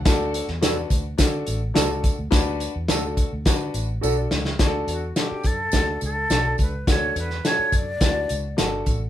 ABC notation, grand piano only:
X:1
M:4/4
L:1/8
Q:1/4=105
K:D
V:1 name="Grand piano"
[DFA] z [DFB] z [DFA] z [DFA] z | [DFB] z [DFA] z [DFB] z [DFA] z | [DF^GA] z [DFA] z [DFA] z [DFA] z | [DFA] z [D=F^FA] z [DEFB] z [DFA] z |]